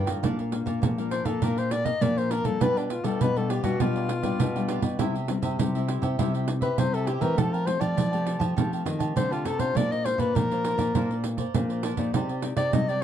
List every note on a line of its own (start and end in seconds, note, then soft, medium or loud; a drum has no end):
0.00 0.20 D3 medium
0.06 0.21 A2 medium
0.06 0.47 D4 medium
0.06 0.48 F4 medium
0.06 0.48 A#4 medium
0.06 0.22 A#4 soft
0.06 0.22 D5 soft
0.06 0.21 G5 medium
0.06 pandeiro medium
0.23 0.61 A#2 medium
0.23 0.80 A#2 medium
0.23 0.37 D4 medium
0.23 0.38 A#4 medium
0.23 0.38 D5 medium
0.23 0.37 F5 medium
0.23 pandeiro medium
0.39 0.51 A#4 soft
0.39 0.52 D5 soft
0.39 0.52 F5 soft
0.39 pandeiro soft
0.52 0.81 A#3 medium
0.52 0.81 D4 medium
0.52 0.81 F4 medium
0.52 muted cavaquinho stroke soft
0.52 pandeiro medium
0.66 0.79 A#2 medium
0.66 0.97 A#4 medium
0.66 0.96 D5 medium
0.66 0.96 F5 medium
0.66 pandeiro medium
0.82 1.20 A#2 medium
0.82 1.39 F3 medium
0.82 pandeiro medium
0.98 1.38 A#3 medium
0.98 1.38 D4 medium
0.98 1.38 F4 medium
0.98 1.11 A#4 soft
0.98 1.11 D5 soft
0.98 1.12 F5 soft
0.98 pandeiro soft
1.11 1.26 D4 soft
1.11 1.26 A#4 medium
1.11 1.27 C5 medium
1.11 1.25 D5 medium
1.11 1.24 F5 medium
1.11 pandeiro medium
1.25 1.39 A#2 medium
1.25 1.45 A4 medium
1.25 1.41 A#4 medium
1.25 1.41 D5 medium
1.25 1.40 F5 medium
1.25 pandeiro medium
1.42 1.93 A#2 medium
1.42 1.99 A#2 medium
1.42 1.81 A#3 medium
1.42 1.56 D4 medium
1.42 1.81 D4 medium
1.42 1.81 F4 medium
1.42 1.56 A#4 medium
1.42 1.60 A#4 medium
1.42 1.56 D5 medium
1.42 1.56 F5 medium
1.42 pandeiro medium
1.57 1.70 A#4 soft
1.57 1.73 C5 medium
1.57 1.70 D5 soft
1.57 1.70 F5 soft
1.57 pandeiro soft
1.71 1.87 D5 medium
1.71 muted cavaquinho stroke soft
1.71 pandeiro medium
1.85 2.15 A#4 soft
1.85 2.15 D5 medium
1.85 2.04 D#5 loud
1.85 2.15 F5 medium
1.85 pandeiro medium
2.01 2.39 A#2 loud
2.01 2.59 F3 medium
2.01 2.30 A#3 medium
2.01 2.30 D4 soft
2.01 2.30 F4 medium
2.01 2.19 D5 medium
2.01 pandeiro medium
2.17 2.29 A#4 soft
2.17 2.32 C5 medium
2.17 2.30 D5 soft
2.17 2.31 F5 soft
2.17 pandeiro soft
2.30 2.45 D4 medium
2.30 2.45 A#4 medium
2.30 2.47 A#4 medium
2.30 2.44 D5 medium
2.30 2.43 F5 medium
2.30 pandeiro medium
2.44 2.58 A#2 medium
2.44 2.86 G3 medium
2.44 2.86 D4 medium
2.44 2.86 F4 medium
2.44 2.64 A4 medium
2.44 2.60 A#4 soft
2.44 2.60 D5 soft
2.44 2.59 F5 soft
2.44 pandeiro medium
2.60 2.99 B2 medium
2.60 3.18 B2 medium
2.60 2.75 F4 medium
2.60 2.75 G4 medium
2.60 2.75 B4 medium
2.60 2.79 B4 medium
2.60 2.76 D5 medium
2.60 pandeiro medium
2.77 2.92 D4 medium
2.77 2.90 G4 soft
2.77 2.90 B4 medium
2.77 2.90 D5 medium
2.77 pandeiro soft
2.90 3.06 F4 medium
2.90 muted cavaquinho stroke soft
2.90 pandeiro medium
3.04 3.18 B2 medium
3.04 3.30 G3 medium
3.04 3.30 D4 medium
3.04 3.31 F4 medium
3.04 3.34 G4 soft
3.04 3.23 A4 medium
3.04 3.34 B4 medium
3.04 3.33 D5 medium
3.04 pandeiro medium
3.21 3.59 B2 medium
3.21 3.77 B2 medium
3.21 3.38 B4 loud
3.21 pandeiro medium
3.36 3.61 G3 medium
3.36 3.61 D4 medium
3.36 3.62 F4 medium
3.36 3.49 G4 soft
3.36 3.52 A4 medium
3.36 3.49 B4 soft
3.36 3.49 D5 soft
3.36 pandeiro soft
3.49 3.64 F4 soft
3.49 3.64 G4 medium
3.49 3.66 G4 medium
3.49 3.63 B4 medium
3.49 3.62 D5 medium
3.49 pandeiro medium
3.63 3.77 B2 medium
3.63 3.75 G3 medium
3.63 3.75 D4 medium
3.63 3.75 F4 medium
3.63 3.82 F#4 medium
3.63 3.79 G4 medium
3.63 3.79 B4 medium
3.63 3.78 D5 medium
3.63 pandeiro medium
3.80 4.37 B2 medium
3.80 4.31 B2 medium
3.80 4.08 G3 medium
3.80 4.08 D4 medium
3.80 3.94 F4 medium
3.80 4.09 F4 medium
3.80 5.00 F4 medium
3.80 3.94 G4 medium
3.80 3.94 B4 medium
3.80 3.95 D5 medium
3.80 pandeiro medium
3.96 4.08 G4 soft
3.96 4.08 B4 soft
3.96 4.09 D5 soft
3.96 pandeiro soft
4.09 muted cavaquinho stroke soft
4.09 pandeiro medium
4.23 4.49 G3 medium
4.23 4.50 D4 medium
4.23 4.50 F4 medium
4.23 4.53 G4 medium
4.23 4.53 B4 medium
4.23 4.52 D5 medium
4.23 pandeiro medium
4.39 4.78 B2 loud
4.39 4.96 B2 medium
4.39 pandeiro medium
4.55 4.95 G3 medium
4.55 4.95 D4 medium
4.55 4.96 F4 medium
4.55 4.68 G4 soft
4.55 4.68 B4 soft
4.55 4.68 D5 medium
4.55 pandeiro soft
4.68 4.83 F4 medium
4.68 4.83 G4 medium
4.68 4.82 B4 medium
4.68 4.81 D5 medium
4.68 pandeiro medium
4.82 4.96 B2 medium
4.82 4.98 G4 soft
4.82 4.98 B4 soft
4.82 4.97 D5 soft
4.82 pandeiro medium
4.99 5.37 C3 medium
4.99 5.56 C3 medium
4.99 5.17 G3 medium
4.99 5.17 C4 medium
4.99 5.13 E4 medium
4.99 5.18 E4 medium
4.99 5.13 G4 medium
4.99 5.14 C5 medium
4.99 5.13 E5 medium
4.99 pandeiro medium
5.14 5.28 G4 soft
5.14 5.28 C5 soft
5.14 5.28 E5 soft
5.14 pandeiro soft
5.28 5.59 G3 medium
5.28 5.69 C4 medium
5.28 5.70 E4 medium
5.28 muted cavaquinho stroke soft
5.28 pandeiro medium
5.42 5.56 C3 medium
5.42 5.73 G4 medium
5.42 5.72 C5 medium
5.42 5.72 E5 medium
5.42 pandeiro medium
5.59 5.97 C3 medium
5.59 5.74 G3 medium
5.59 pandeiro medium
5.75 6.15 G3 medium
5.75 6.15 C4 medium
5.75 6.15 E4 medium
5.75 5.87 G4 soft
5.75 5.88 C5 soft
5.75 5.88 E5 medium
5.75 pandeiro soft
5.88 6.02 E4 medium
5.88 6.02 G4 medium
5.88 6.02 C5 medium
5.88 6.00 E5 medium
5.88 pandeiro medium
6.02 6.15 C3 medium
6.02 6.17 G4 medium
6.02 6.17 C5 medium
6.02 6.16 E5 medium
6.02 pandeiro medium
6.18 6.70 C3 loud
6.18 6.76 C3 medium
6.18 6.57 G3 medium
6.18 6.58 C4 medium
6.18 6.32 E4 medium
6.18 6.58 E4 medium
6.18 6.32 G4 medium
6.18 6.33 C5 medium
6.18 6.32 E5 medium
6.18 pandeiro medium
6.34 6.46 G4 soft
6.34 6.47 C5 soft
6.34 6.47 E5 medium
6.34 pandeiro soft
6.47 muted cavaquinho stroke soft
6.47 pandeiro medium
6.61 6.92 G4 soft
6.61 6.80 B4 medium
6.61 6.91 C5 medium
6.61 6.91 E5 medium
6.61 pandeiro medium
6.78 7.16 C3 loud
6.78 7.06 G3 medium
6.78 7.07 C4 medium
6.78 7.07 E4 medium
6.78 6.96 C5 medium
6.78 pandeiro medium
6.93 7.06 G4 soft
6.93 7.09 A4 medium
6.93 7.07 C5 soft
6.93 7.07 E5 soft
6.93 pandeiro soft
7.07 7.21 E4 medium
7.07 7.23 G4 medium
7.07 7.21 G4 medium
7.07 7.21 C5 medium
7.07 7.20 E5 medium
7.07 pandeiro medium
7.21 7.34 E3 medium
7.21 7.62 A3 medium
7.21 7.62 C4 medium
7.21 7.63 G4 medium
7.21 7.37 G4 soft
7.21 7.39 A#4 medium
7.21 7.36 C5 soft
7.21 7.36 E5 medium
7.21 pandeiro medium
7.37 7.76 F3 medium
7.37 7.95 F3 medium
7.37 7.52 G4 medium
7.37 7.55 A4 medium
7.37 7.51 A4 medium
7.37 7.52 F5 medium
7.37 7.51 A5 medium
7.37 pandeiro medium
7.52 7.65 G4 soft
7.52 7.67 A#4 medium
7.52 7.65 F5 soft
7.52 7.66 A5 medium
7.52 pandeiro soft
7.66 7.95 A3 medium
7.66 7.95 C4 medium
7.66 7.95 G4 medium
7.66 7.82 C5 medium
7.66 muted cavaquinho stroke soft
7.66 pandeiro medium
7.80 7.94 F3 medium
7.80 8.10 G4 medium
7.80 8.41 D5 medium
7.80 8.10 F5 medium
7.80 8.10 A5 medium
7.80 pandeiro medium
7.97 8.54 C3 medium
7.97 8.35 F3 medium
7.97 pandeiro medium
8.11 8.52 A3 medium
8.11 8.53 C4 medium
8.11 8.25 G4 soft
8.11 8.53 G4 medium
8.11 8.26 F5 soft
8.11 8.25 A5 soft
8.11 pandeiro soft
8.25 8.40 G4 medium
8.25 8.40 A4 medium
8.25 8.39 F5 medium
8.25 8.38 A5 medium
8.25 pandeiro medium
8.39 8.53 F3 medium
8.39 8.55 G4 medium
8.39 8.55 F5 medium
8.39 8.54 A5 medium
8.39 pandeiro medium
8.56 9.13 F3 medium
8.56 8.82 F3 medium
8.56 9.12 A3 medium
8.56 9.12 C4 medium
8.56 8.71 G4 medium
8.56 9.12 G4 medium
8.56 8.70 A4 medium
8.56 8.71 F5 medium
8.56 8.71 A5 medium
8.56 pandeiro medium
8.72 8.85 G4 soft
8.72 8.85 F5 soft
8.72 8.86 A5 soft
8.72 pandeiro soft
8.86 9.13 D#3 medium
8.86 muted cavaquinho stroke soft
8.86 pandeiro medium
8.99 9.30 G4 soft
8.99 9.29 F5 medium
8.99 9.29 A5 medium
8.99 pandeiro medium
9.16 9.73 C3 medium
9.16 9.43 D3 medium
9.16 9.57 A3 medium
9.16 9.57 C4 medium
9.16 9.57 G4 medium
9.16 9.34 C5 medium
9.16 pandeiro medium
9.31 9.47 F4 medium
9.31 9.44 G4 soft
9.31 9.45 F5 soft
9.31 9.45 A5 soft
9.31 pandeiro soft
9.45 9.72 C3 medium
9.45 9.59 G4 medium
9.45 9.59 A4 medium
9.45 9.61 A4 medium
9.45 9.59 F5 medium
9.45 9.58 A5 medium
9.45 pandeiro medium
9.59 10.00 D4 medium
9.59 10.00 F4 medium
9.59 9.75 G4 soft
9.59 9.78 C5 medium
9.59 10.01 C5 medium
9.59 9.74 F5 soft
9.59 9.74 A5 medium
9.59 pandeiro medium
9.75 10.13 A#2 medium
9.75 10.33 A#3 medium
9.75 9.89 D4 medium
9.75 9.90 A#4 medium
9.75 9.90 C5 medium
9.75 9.93 D5 medium
9.75 9.90 D5 medium
9.75 pandeiro medium
9.91 10.04 A#4 soft
9.91 10.04 C5 soft
9.91 10.04 D5 soft
9.91 10.07 D#5 medium
9.91 pandeiro soft
10.05 10.33 D4 medium
10.05 10.33 F4 medium
10.05 10.21 C5 medium
10.05 10.34 C5 medium
10.05 muted cavaquinho stroke soft
10.05 pandeiro medium
10.18 10.32 A#2 medium
10.18 10.49 A#4 medium
10.18 10.37 B4 medium
10.18 10.49 C5 medium
10.18 10.48 D5 medium
10.18 pandeiro medium
10.35 10.73 A#2 loud
10.35 10.92 F3 medium
10.35 11.25 A#4 loud
10.35 pandeiro medium
10.51 10.90 D4 medium
10.51 10.91 F4 medium
10.51 10.64 A#4 soft
10.51 10.91 C5 medium
10.51 10.65 C5 soft
10.51 10.64 D5 soft
10.51 pandeiro soft
10.65 10.79 D4 medium
10.65 10.79 A#4 medium
10.65 10.79 C5 medium
10.65 10.77 D5 medium
10.65 pandeiro medium
10.78 10.91 A#2 medium
10.78 10.94 A#4 medium
10.78 10.94 C5 medium
10.78 10.93 D5 medium
10.78 pandeiro medium
10.95 11.45 A#2 medium
10.95 11.51 A#3 medium
10.95 11.33 D4 medium
10.95 11.09 D4 medium
10.95 11.33 F4 medium
10.95 11.09 A#4 medium
10.95 11.33 C5 medium
10.95 11.09 C5 medium
10.95 11.09 D5 medium
10.95 pandeiro medium
11.11 11.23 A#4 soft
11.11 11.23 C5 soft
11.11 11.23 D5 soft
11.11 pandeiro soft
11.24 muted cavaquinho stroke soft
11.24 pandeiro medium
11.37 11.68 A#4 soft
11.37 11.68 C5 medium
11.37 11.67 D5 medium
11.37 pandeiro medium
11.54 11.92 A#2 loud
11.54 12.11 F3 medium
11.54 11.82 D4 medium
11.54 11.82 F4 medium
11.54 11.83 C5 medium
11.54 pandeiro medium
11.69 11.83 A#4 soft
11.69 11.83 C5 medium
11.69 11.83 D5 medium
11.69 pandeiro soft
11.83 11.97 D4 medium
11.83 11.98 A#4 medium
11.83 11.97 C5 medium
11.83 11.96 D5 medium
11.83 pandeiro medium
11.97 12.11 A#2 medium
11.97 12.38 D#4 medium
11.97 12.38 G4 medium
11.97 12.13 A#4 soft
11.97 12.12 C5 soft
11.97 12.12 D5 soft
11.97 12.39 D5 medium
11.97 pandeiro medium
12.13 12.52 C3 medium
12.13 12.70 C4 medium
12.13 12.27 D#4 medium
12.13 12.28 G4 medium
12.13 12.28 C5 medium
12.13 12.28 D5 medium
12.13 pandeiro medium
12.29 12.42 G4 soft
12.29 12.42 C5 soft
12.29 12.42 D5 soft
12.29 pandeiro soft
12.42 12.53 D#4 medium
12.42 12.53 G4 medium
12.42 12.53 D5 medium
12.42 muted cavaquinho stroke soft
12.42 pandeiro medium
12.56 12.70 C3 medium
12.56 12.83 D#4 medium
12.56 12.87 G4 medium
12.56 12.83 G4 medium
12.56 12.86 C5 medium
12.56 12.86 D5 medium
12.56 12.75 D5 medium
12.56 12.83 D5 medium
12.56 pandeiro medium
12.73 13.04 C3 medium
12.73 13.04 G3 medium
12.73 12.91 D#5 medium
12.73 pandeiro medium
12.88 13.04 D#4 medium
12.88 13.04 G4 medium
12.88 13.01 G4 soft
12.88 13.01 C5 soft
12.88 13.02 D5 soft
12.88 13.03 D5 medium
12.88 13.04 D5 medium
12.88 pandeiro soft